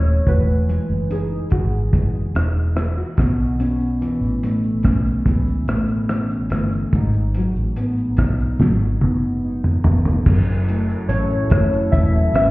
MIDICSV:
0, 0, Header, 1, 6, 480
1, 0, Start_track
1, 0, Tempo, 833333
1, 151, Time_signature, 4, 2, 24, 8
1, 7205, End_track
2, 0, Start_track
2, 0, Title_t, "Synth keys"
2, 0, Program_c, 0, 88
2, 0, Note_on_c, 0, 73, 89
2, 162, Note_on_c, 0, 71, 80
2, 166, Note_off_c, 0, 73, 0
2, 644, Note_on_c, 0, 68, 70
2, 651, Note_off_c, 0, 71, 0
2, 1095, Note_off_c, 0, 68, 0
2, 6385, Note_on_c, 0, 73, 95
2, 6866, Note_on_c, 0, 76, 102
2, 6882, Note_off_c, 0, 73, 0
2, 7112, Note_off_c, 0, 76, 0
2, 7118, Note_on_c, 0, 76, 105
2, 7205, Note_off_c, 0, 76, 0
2, 7205, End_track
3, 0, Start_track
3, 0, Title_t, "Analog synth pad"
3, 0, Program_c, 1, 89
3, 5906, Note_on_c, 1, 54, 77
3, 5906, Note_on_c, 1, 69, 80
3, 5908, Note_on_c, 1, 64, 72
3, 7205, Note_off_c, 1, 54, 0
3, 7205, Note_off_c, 1, 64, 0
3, 7205, Note_off_c, 1, 69, 0
3, 7205, End_track
4, 0, Start_track
4, 0, Title_t, "Nylon-string guitar"
4, 0, Program_c, 2, 24
4, 0, Note_on_c, 2, 42, 77
4, 0, Note_on_c, 2, 52, 61
4, 0, Note_on_c, 2, 57, 57
4, 0, Note_on_c, 2, 61, 62
4, 154, Note_off_c, 2, 42, 0
4, 154, Note_off_c, 2, 52, 0
4, 157, Note_on_c, 2, 52, 77
4, 159, Note_on_c, 2, 66, 67
4, 200, Note_off_c, 2, 61, 0
4, 202, Note_off_c, 2, 57, 0
4, 397, Note_on_c, 2, 56, 59
4, 634, Note_on_c, 2, 63, 55
4, 870, Note_off_c, 2, 66, 0
4, 872, Note_on_c, 2, 66, 64
4, 1106, Note_off_c, 2, 56, 0
4, 1113, Note_on_c, 2, 56, 60
4, 1346, Note_off_c, 2, 63, 0
4, 1353, Note_on_c, 2, 63, 58
4, 1585, Note_off_c, 2, 66, 0
4, 1587, Note_on_c, 2, 64, 65
4, 1711, Note_off_c, 2, 64, 0
4, 1711, Note_on_c, 2, 66, 60
4, 1832, Note_on_c, 2, 47, 77
4, 1879, Note_off_c, 2, 66, 0
4, 1880, Note_off_c, 2, 56, 0
4, 1880, Note_off_c, 2, 63, 0
4, 2062, Note_off_c, 2, 47, 0
4, 2069, Note_on_c, 2, 47, 69
4, 2072, Note_on_c, 2, 61, 66
4, 2173, Note_off_c, 2, 52, 0
4, 2309, Note_on_c, 2, 52, 64
4, 2552, Note_on_c, 2, 57, 65
4, 2785, Note_off_c, 2, 61, 0
4, 2792, Note_on_c, 2, 61, 64
4, 3026, Note_off_c, 2, 52, 0
4, 3033, Note_on_c, 2, 52, 65
4, 3267, Note_off_c, 2, 57, 0
4, 3274, Note_on_c, 2, 57, 55
4, 3508, Note_off_c, 2, 61, 0
4, 3515, Note_on_c, 2, 61, 64
4, 3742, Note_off_c, 2, 57, 0
4, 3749, Note_on_c, 2, 57, 52
4, 3990, Note_off_c, 2, 47, 0
4, 3993, Note_off_c, 2, 61, 0
4, 3995, Note_on_c, 2, 44, 79
4, 3998, Note_on_c, 2, 63, 61
4, 4038, Note_off_c, 2, 57, 0
4, 4040, Note_off_c, 2, 52, 0
4, 4240, Note_on_c, 2, 54, 55
4, 4476, Note_on_c, 2, 59, 62
4, 4710, Note_off_c, 2, 63, 0
4, 4717, Note_on_c, 2, 63, 63
4, 4958, Note_off_c, 2, 54, 0
4, 4960, Note_on_c, 2, 54, 57
4, 5193, Note_off_c, 2, 59, 0
4, 5200, Note_on_c, 2, 59, 50
4, 5433, Note_off_c, 2, 63, 0
4, 5441, Note_on_c, 2, 63, 57
4, 5669, Note_off_c, 2, 59, 0
4, 5676, Note_on_c, 2, 59, 59
4, 5912, Note_off_c, 2, 44, 0
4, 5916, Note_on_c, 2, 42, 82
4, 5961, Note_off_c, 2, 59, 0
4, 5963, Note_off_c, 2, 63, 0
4, 6155, Note_on_c, 2, 57, 58
4, 6391, Note_on_c, 2, 61, 75
4, 6623, Note_off_c, 2, 57, 0
4, 6630, Note_on_c, 2, 57, 59
4, 6865, Note_off_c, 2, 54, 0
4, 6867, Note_on_c, 2, 52, 64
4, 7104, Note_off_c, 2, 61, 0
4, 7110, Note_on_c, 2, 61, 66
4, 7205, Note_off_c, 2, 42, 0
4, 7205, Note_off_c, 2, 52, 0
4, 7205, Note_off_c, 2, 57, 0
4, 7205, Note_off_c, 2, 61, 0
4, 7205, End_track
5, 0, Start_track
5, 0, Title_t, "Fingered electric bass"
5, 0, Program_c, 3, 33
5, 0, Note_on_c, 3, 27, 77
5, 104, Note_off_c, 3, 27, 0
5, 154, Note_on_c, 3, 28, 89
5, 441, Note_off_c, 3, 28, 0
5, 515, Note_on_c, 3, 30, 82
5, 802, Note_off_c, 3, 30, 0
5, 875, Note_on_c, 3, 32, 79
5, 1066, Note_off_c, 3, 32, 0
5, 1110, Note_on_c, 3, 30, 92
5, 1303, Note_off_c, 3, 30, 0
5, 1348, Note_on_c, 3, 28, 82
5, 1733, Note_off_c, 3, 28, 0
5, 1832, Note_on_c, 3, 35, 78
5, 2312, Note_off_c, 3, 35, 0
5, 2425, Note_on_c, 3, 33, 87
5, 2715, Note_off_c, 3, 33, 0
5, 2791, Note_on_c, 3, 35, 75
5, 2983, Note_off_c, 3, 35, 0
5, 3029, Note_on_c, 3, 37, 89
5, 3222, Note_off_c, 3, 37, 0
5, 3269, Note_on_c, 3, 33, 90
5, 3654, Note_off_c, 3, 33, 0
5, 3749, Note_on_c, 3, 31, 77
5, 3942, Note_off_c, 3, 31, 0
5, 3993, Note_on_c, 3, 32, 102
5, 4280, Note_off_c, 3, 32, 0
5, 4351, Note_on_c, 3, 33, 81
5, 4638, Note_off_c, 3, 33, 0
5, 4714, Note_on_c, 3, 35, 79
5, 4905, Note_off_c, 3, 35, 0
5, 4954, Note_on_c, 3, 32, 79
5, 5144, Note_off_c, 3, 32, 0
5, 5194, Note_on_c, 3, 30, 83
5, 5577, Note_off_c, 3, 30, 0
5, 5668, Note_on_c, 3, 29, 72
5, 5861, Note_off_c, 3, 29, 0
5, 5910, Note_on_c, 3, 30, 113
5, 6294, Note_off_c, 3, 30, 0
5, 6386, Note_on_c, 3, 33, 105
5, 6579, Note_off_c, 3, 33, 0
5, 6632, Note_on_c, 3, 30, 83
5, 6823, Note_off_c, 3, 30, 0
5, 6870, Note_on_c, 3, 28, 101
5, 7062, Note_off_c, 3, 28, 0
5, 7105, Note_on_c, 3, 32, 88
5, 7205, Note_off_c, 3, 32, 0
5, 7205, End_track
6, 0, Start_track
6, 0, Title_t, "Drums"
6, 154, Note_on_c, 9, 36, 91
6, 155, Note_on_c, 9, 42, 58
6, 212, Note_off_c, 9, 36, 0
6, 213, Note_off_c, 9, 42, 0
6, 399, Note_on_c, 9, 42, 52
6, 456, Note_off_c, 9, 42, 0
6, 638, Note_on_c, 9, 42, 68
6, 695, Note_off_c, 9, 42, 0
6, 865, Note_on_c, 9, 42, 46
6, 875, Note_on_c, 9, 36, 88
6, 923, Note_off_c, 9, 42, 0
6, 932, Note_off_c, 9, 36, 0
6, 1112, Note_on_c, 9, 36, 83
6, 1112, Note_on_c, 9, 42, 63
6, 1169, Note_off_c, 9, 36, 0
6, 1169, Note_off_c, 9, 42, 0
6, 1354, Note_on_c, 9, 42, 47
6, 1361, Note_on_c, 9, 37, 99
6, 1412, Note_off_c, 9, 42, 0
6, 1419, Note_off_c, 9, 37, 0
6, 1593, Note_on_c, 9, 37, 94
6, 1599, Note_on_c, 9, 42, 63
6, 1651, Note_off_c, 9, 37, 0
6, 1656, Note_off_c, 9, 42, 0
6, 1828, Note_on_c, 9, 42, 56
6, 1831, Note_on_c, 9, 36, 102
6, 1839, Note_on_c, 9, 37, 73
6, 1886, Note_off_c, 9, 42, 0
6, 1889, Note_off_c, 9, 36, 0
6, 1896, Note_off_c, 9, 37, 0
6, 2073, Note_on_c, 9, 42, 60
6, 2073, Note_on_c, 9, 82, 67
6, 2130, Note_off_c, 9, 42, 0
6, 2130, Note_off_c, 9, 82, 0
6, 2189, Note_on_c, 9, 82, 45
6, 2247, Note_off_c, 9, 82, 0
6, 2315, Note_on_c, 9, 42, 56
6, 2315, Note_on_c, 9, 82, 54
6, 2373, Note_off_c, 9, 42, 0
6, 2373, Note_off_c, 9, 82, 0
6, 2433, Note_on_c, 9, 82, 39
6, 2491, Note_off_c, 9, 82, 0
6, 2554, Note_on_c, 9, 42, 67
6, 2554, Note_on_c, 9, 82, 70
6, 2611, Note_off_c, 9, 42, 0
6, 2611, Note_off_c, 9, 82, 0
6, 2668, Note_on_c, 9, 82, 39
6, 2725, Note_off_c, 9, 82, 0
6, 2782, Note_on_c, 9, 42, 49
6, 2782, Note_on_c, 9, 82, 46
6, 2791, Note_on_c, 9, 36, 84
6, 2794, Note_on_c, 9, 37, 84
6, 2840, Note_off_c, 9, 42, 0
6, 2840, Note_off_c, 9, 82, 0
6, 2849, Note_off_c, 9, 36, 0
6, 2851, Note_off_c, 9, 37, 0
6, 2911, Note_on_c, 9, 82, 53
6, 2968, Note_off_c, 9, 82, 0
6, 3029, Note_on_c, 9, 36, 86
6, 3031, Note_on_c, 9, 42, 65
6, 3031, Note_on_c, 9, 82, 65
6, 3086, Note_off_c, 9, 36, 0
6, 3088, Note_off_c, 9, 42, 0
6, 3088, Note_off_c, 9, 82, 0
6, 3154, Note_on_c, 9, 82, 49
6, 3211, Note_off_c, 9, 82, 0
6, 3270, Note_on_c, 9, 42, 49
6, 3270, Note_on_c, 9, 82, 48
6, 3277, Note_on_c, 9, 37, 90
6, 3328, Note_off_c, 9, 42, 0
6, 3328, Note_off_c, 9, 82, 0
6, 3335, Note_off_c, 9, 37, 0
6, 3384, Note_on_c, 9, 82, 49
6, 3441, Note_off_c, 9, 82, 0
6, 3510, Note_on_c, 9, 37, 93
6, 3515, Note_on_c, 9, 42, 66
6, 3515, Note_on_c, 9, 82, 62
6, 3567, Note_off_c, 9, 37, 0
6, 3573, Note_off_c, 9, 42, 0
6, 3573, Note_off_c, 9, 82, 0
6, 3631, Note_on_c, 9, 82, 46
6, 3688, Note_off_c, 9, 82, 0
6, 3744, Note_on_c, 9, 42, 60
6, 3744, Note_on_c, 9, 82, 56
6, 3755, Note_on_c, 9, 37, 79
6, 3802, Note_off_c, 9, 42, 0
6, 3802, Note_off_c, 9, 82, 0
6, 3812, Note_off_c, 9, 37, 0
6, 3873, Note_on_c, 9, 82, 48
6, 3931, Note_off_c, 9, 82, 0
6, 3991, Note_on_c, 9, 36, 90
6, 3991, Note_on_c, 9, 42, 61
6, 3991, Note_on_c, 9, 82, 66
6, 4048, Note_off_c, 9, 36, 0
6, 4048, Note_off_c, 9, 42, 0
6, 4048, Note_off_c, 9, 82, 0
6, 4106, Note_on_c, 9, 82, 48
6, 4164, Note_off_c, 9, 82, 0
6, 4230, Note_on_c, 9, 42, 59
6, 4230, Note_on_c, 9, 82, 57
6, 4288, Note_off_c, 9, 42, 0
6, 4288, Note_off_c, 9, 82, 0
6, 4352, Note_on_c, 9, 82, 39
6, 4410, Note_off_c, 9, 82, 0
6, 4472, Note_on_c, 9, 42, 63
6, 4472, Note_on_c, 9, 82, 66
6, 4530, Note_off_c, 9, 42, 0
6, 4530, Note_off_c, 9, 82, 0
6, 4591, Note_on_c, 9, 82, 44
6, 4648, Note_off_c, 9, 82, 0
6, 4704, Note_on_c, 9, 42, 47
6, 4704, Note_on_c, 9, 82, 44
6, 4714, Note_on_c, 9, 36, 90
6, 4716, Note_on_c, 9, 37, 88
6, 4762, Note_off_c, 9, 42, 0
6, 4762, Note_off_c, 9, 82, 0
6, 4771, Note_off_c, 9, 36, 0
6, 4773, Note_off_c, 9, 37, 0
6, 4836, Note_on_c, 9, 82, 51
6, 4893, Note_off_c, 9, 82, 0
6, 4952, Note_on_c, 9, 36, 74
6, 4957, Note_on_c, 9, 38, 52
6, 5009, Note_off_c, 9, 36, 0
6, 5014, Note_off_c, 9, 38, 0
6, 5192, Note_on_c, 9, 48, 65
6, 5249, Note_off_c, 9, 48, 0
6, 5553, Note_on_c, 9, 45, 65
6, 5611, Note_off_c, 9, 45, 0
6, 5669, Note_on_c, 9, 43, 92
6, 5727, Note_off_c, 9, 43, 0
6, 5791, Note_on_c, 9, 43, 76
6, 5849, Note_off_c, 9, 43, 0
6, 5911, Note_on_c, 9, 36, 104
6, 5912, Note_on_c, 9, 49, 93
6, 5969, Note_off_c, 9, 36, 0
6, 5969, Note_off_c, 9, 49, 0
6, 6030, Note_on_c, 9, 82, 59
6, 6087, Note_off_c, 9, 82, 0
6, 6153, Note_on_c, 9, 42, 60
6, 6153, Note_on_c, 9, 82, 59
6, 6211, Note_off_c, 9, 42, 0
6, 6211, Note_off_c, 9, 82, 0
6, 6275, Note_on_c, 9, 82, 42
6, 6332, Note_off_c, 9, 82, 0
6, 6389, Note_on_c, 9, 42, 73
6, 6389, Note_on_c, 9, 82, 68
6, 6447, Note_off_c, 9, 42, 0
6, 6447, Note_off_c, 9, 82, 0
6, 6510, Note_on_c, 9, 82, 48
6, 6567, Note_off_c, 9, 82, 0
6, 6624, Note_on_c, 9, 42, 49
6, 6624, Note_on_c, 9, 82, 50
6, 6632, Note_on_c, 9, 36, 92
6, 6636, Note_on_c, 9, 37, 96
6, 6681, Note_off_c, 9, 42, 0
6, 6681, Note_off_c, 9, 82, 0
6, 6689, Note_off_c, 9, 36, 0
6, 6693, Note_off_c, 9, 37, 0
6, 6755, Note_on_c, 9, 82, 57
6, 6813, Note_off_c, 9, 82, 0
6, 6870, Note_on_c, 9, 36, 85
6, 6872, Note_on_c, 9, 42, 67
6, 6872, Note_on_c, 9, 82, 66
6, 6927, Note_off_c, 9, 36, 0
6, 6930, Note_off_c, 9, 42, 0
6, 6930, Note_off_c, 9, 82, 0
6, 6997, Note_on_c, 9, 82, 49
6, 7055, Note_off_c, 9, 82, 0
6, 7110, Note_on_c, 9, 42, 53
6, 7110, Note_on_c, 9, 82, 58
6, 7117, Note_on_c, 9, 37, 103
6, 7168, Note_off_c, 9, 42, 0
6, 7168, Note_off_c, 9, 82, 0
6, 7174, Note_off_c, 9, 37, 0
6, 7205, End_track
0, 0, End_of_file